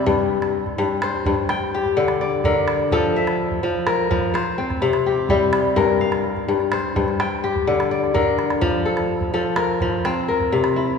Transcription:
Already playing: kora C3 G3 C4 E4 G4
0.06 kora G2, calabash thump, calabash click
0.42 calabash click
0.66 calabash thump
0.78 kora G2
1.02 kora C5, calabash click
1.14 calabash click
1.26 kora G2, calabash thump
1.49 kora G5, calabash click
1.74 kora G4
1.85 calabash thump, calabash click
1.97 kora D3, calabash click
2.08 calabash click
2.21 kora D5
2.44 kora D3 A#4, calabash thump
2.68 calabash click
2.79 calabash click
2.92 kora F3 A4, calabash thump, calabash click
3.16 kora E5
3.27 calabash click
3.51 calabash thump
3.63 kora F3
3.87 kora A#4, calabash click
3.99 calabash click
4.11 kora F3, calabash thump
4.34 kora C5, calabash click
4.58 kora C4
4.70 calabash thump, calabash click
4.82 kora C3, calabash click
4.93 calabash click
5.06 kora G4
5.29 kora G3 E4, calabash thump
5.53 calabash click
5.65 calabash click
5.76 kora G2 A#4, calabash thump
6.01 kora F5
6.12 calabash click
6.24 calabash click
6.36 calabash thump
6.48 kora G2
6.60 calabash click
6.72 kora C5, calabash click
6.96 kora G2, calabash thump
7.08 calabash click
7.20 kora G5, calabash click
7.44 kora G4
7.56 calabash thump
7.67 kora D3
7.80 calabash click
7.91 kora D5
8.04 calabash click
8.14 kora D3 A#4, calabash thump
8.27 calabash thump
8.39 calabash click
8.50 calabash click
8.61 kora F3, calabash thump, calabash click
8.85 kora A4
8.97 calabash click
9.21 calabash thump
9.34 kora F3 A4
9.56 kora A#4, calabash click
9.69 calabash click
9.81 kora F3, calabash thump
10.05 kora C4, calabash click
10.28 kora A#4
10.40 calabash thump, calabash click
10.52 kora C3, calabash click
10.64 calabash click
10.76 kora E4

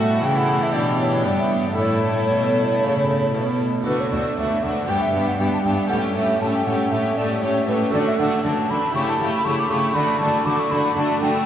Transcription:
Already playing: harpsichord A2 C#4 E4 A4, cello section A2, viola section A3, violin section F#4 A4
0.00 flute E5
0.23 cello section C#3, harpsichord C#3, viola section E3, violin section E4 A4, flute G5
0.37 flute F#5
0.63 flute E5
0.70 harpsichord D4 G4 D5
0.74 cello section B2, harpsichord B2, violin section D4 G4, flute D5
1.00 flute C#5
1.25 harpsichord G2, cello section G2, viola section B3, flute D5
1.38 flute E5
1.66 flute D5
1.73 harpsichord E4 A4
1.78 cello section A2, harpsichord A2, viola section A3, violin section E4 A4, flute C#5
2.30 cello section B2, harpsichord B2
2.83 cello section C#3, harpsichord C#3
3.34 harpsichord B2, cello section B2
3.82 harpsichord D4 F#4 A4
3.86 cello section D2, harpsichord D2, viola section A3, violin section D4 F#4, flute B4
4.00 flute C#5
4.12 cello section D2, harpsichord D2, viola section A3, violin section D4 F#4, flute D5
4.38 harpsichord D2, cello section D2, viola section A3, violin section D4 F#4, flute E5
4.63 cello section D2, harpsichord D2, viola section A3, violin section D4 F#4, flute F#5
4.85 cello section G2, viola section B3, harpsichord D4 G4 B4, violin section G4
4.89 harpsichord G2, violin section D4, flute G5
5.02 flute E5
5.14 cello section G2, harpsichord G2, viola section B3, violin section D4 G4
5.28 flute F#5
5.39 cello section G2, harpsichord G2, viola section B3, violin section D4 G4, flute G5
5.53 flute A5
5.64 cello section G2, harpsichord G2, viola section B3, violin section D4 G4, flute G5
5.86 cello section A2, viola section A3, harpsichord C#4 G4 A4, violin section G4, flute F#5
5.91 harpsichord A2, violin section C#4
6.15 cello section A2, harpsichord A2, viola section A3, violin section C#4 G4, flute E5
6.40 cello section A2, harpsichord A2, viola section A3, violin section C#4 G4, flute A5
6.54 flute G5
6.66 cello section A2, harpsichord A2, viola section A3, violin section C#4 G4, flute F#5
6.92 cello section A2, harpsichord A2, viola section A3, violin section C#4 G4, flute E5
7.17 cello section A2, harpsichord A2, viola section A3, violin section C#4 G4, flute D5
7.42 cello section A2, harpsichord A2, viola section A3, violin section C#4 G4, flute C#5
7.68 cello section A2, harpsichord A2, viola section A3, violin section C#4 G4, flute B4
7.88 harpsichord A3 F#4 A4
7.93 harpsichord D3, cello section D3, viola section A3, violin section D4 F#4, flute D5
8.07 flute E5
8.18 harpsichord D3, cello section D3, viola section A3, violin section D4 F#4, flute F#5
8.44 cello section D3, harpsichord D3, viola section A3, violin section D4 F#4, flute A5
8.69 cello section D3, harpsichord D3, viola section A3, violin section D4 F#4, flute B5
8.91 cello section C#3, harpsichord A3 E4 G4, violin section G4
8.95 harpsichord C#3, viola section A3, violin section E4, flute C#6
9.07 flute A5
9.20 cello section C#3, harpsichord C#3, viola section A3, violin section E4 G4
9.33 flute B5
9.45 cello section C#3, harpsichord C#3, viola section A3, violin section E4 G4, flute C#6
9.58 flute D6
9.70 cello section C#3, harpsichord C#3, viola section A3, violin section E4 G4, flute C#6
9.91 harpsichord A3 D4 F#4, viola section A3, flute B5
9.95 cello section D3, harpsichord D3, violin section D4 F#4
10.20 cello section D3, harpsichord D3, viola section A3, violin section D4 F#4, flute A5
10.45 cello section D3, harpsichord D3, viola section A3, violin section D4 F#4, flute D6
10.59 flute C#6
10.71 cello section D3, harpsichord D3, viola section A3, violin section D4 F#4, flute B5
10.96 cello section D3, harpsichord D3, viola section A3, violin section D4 F#4, flute A5
11.21 cello section D3, harpsichord D3, viola section A3, violin section D4 F#4, flute G5

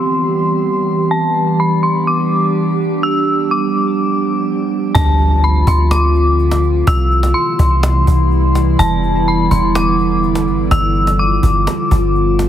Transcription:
Already playing: ambient pad E3 G3 B3 C4 G4, synth bell C6, downlifter
1.11 ambient pad G3 B3 D4 G4, synth bell A5
1.60 synth bell B5
1.83 synth bell C6
2.07 synth bell D6
3.03 ambient pad F3 B3, synth bell E6
3.51 synth bell D6
4.95 808-style bass D2, ambient pad D3 F3 A3 C4 F4, synth bell A5, cajon bass, impact
5.19 cajon slap
5.43 synth bell B5, cajon slap
5.67 808-style bass D2, synth bell C6, cajon bass
5.91 synth bell D6, cajon slap
6.15 cajon slap
6.39 cajon slap
6.51 cajon slap
6.87 808-style bass C2, ambient pad C3 E3 G3 B3 E4, synth bell E6, cajon bass
7.11 cajon slap
7.23 cajon slap
7.34 synth bell C6, cajon slap
7.59 808-style bass C2, cajon bass
7.83 cajon slap
8.07 808-style bass C2, cajon bass
8.31 cajon slap
8.55 cajon slap
8.79 808-style bass E1, ambient pad D3 B3, synth bell A5, cajon bass
9.03 cajon slap
9.27 synth bell B5, cajon slap
9.51 808-style bass E1, synth bell C6, cajon bass
9.75 synth bell D6, cajon slap
9.99 cajon slap
10.23 cajon slap
10.35 cajon slap
10.47 808-style bass G1, cajon slap
10.71 808-style bass G1, ambient pad F3 B3 F4, synth bell E6, cajon bass
10.95 cajon slap
11.07 cajon slap
11.19 synth bell D6
11.43 808-style bass G1, cajon bass
11.67 cajon slap
11.91 808-style bass G1, cajon bass
11.99 cajon slap
12.07 cajon slap
12.15 cajon slap
12.39 cajon slap
12.45 cajon slap

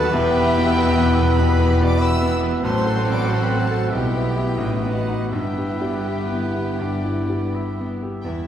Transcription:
Already playing: grand piano D#2 D#3 B3 F#4 B4, violin section F#4 A5, clarinet A4, trumpet B4
0.10 double bass section E1, cello section E2, grand piano E2, viola section E3 B3, french horn section B3 E4, bassoon B3, clarinet G4, violin section G4 B4 G5, flute E5, oboe E5
0.37 grand piano B4
0.57 grand piano B2
0.78 grand piano B4
0.98 grand piano B3
1.19 grand piano B4
1.37 grand piano B2, viola section E3 B3, bassoon B3, violin section G4 B4 B5, clarinet B4, oboe E5, flute G5
1.59 grand piano B4
1.81 grand piano B2, clarinet D5, flute B5
1.86 violin section D6
1.99 viola section E3 B3, bassoon B3, violin section G4 B4 E6, grand piano B4, clarinet E5, oboe E5, flute B5
2.21 grand piano B3
2.43 grand piano B4
2.62 grand piano A1, double bass section A1, cello section A2, viola section F#3 C4, french horn section A3 F#4, bassoon C4, violin section F#4 A4 C6, clarinet C5, trumpet C5, oboe F#5, flute A5
2.86 grand piano A4
3.07 grand piano A2
3.12 clarinet D5, flute B5, violin section D6
3.26 grand piano A4, clarinet C5, flute A5, violin section C6
3.43 clarinet B4, flute G5, violin section B5
3.51 grand piano C4
3.60 clarinet A4, flute F#5, violin section A5
3.71 grand piano A4
3.89 double bass section B1, grand piano B1, cello section B2, viola section G3 B3, bassoon B3, french horn section B3 E4, violin section E4 G4 G5, clarinet G4, trumpet B4, oboe E5, flute E5
4.15 grand piano B3
4.24 viola section A3
4.36 grand piano E4 G4
4.56 grand piano A1, double bass section A1, cello section A2, french horn section B3 D#4, viola section B3, bassoon B3, violin section F#4, trumpet B4, oboe D#5
4.61 violin section D#4
4.83 grand piano B3
4.94 clarinet F#4, flute D#5, violin section F#5
5.08 grand piano D#4 F#4
5.30 double bass section G1, cello section G2, grand piano G2, bassoon B3, french horn section B3 E4, viola section B3, violin section E4 G4 G5, clarinet G4, trumpet B4, flute E5, oboe E5
5.57 grand piano G4
5.81 grand piano G3
6.05 grand piano G4, oboe B4
6.31 grand piano B3
6.55 grand piano G4
6.79 grand piano G2, oboe D5
7.05 grand piano E4
7.30 grand piano G3
7.54 grand piano G4, oboe E5
7.80 grand piano B3
8.03 grand piano G4
8.22 grand piano E2, double bass section E2, viola section B3 E4, cello section E4, violin section B4 E5 G5

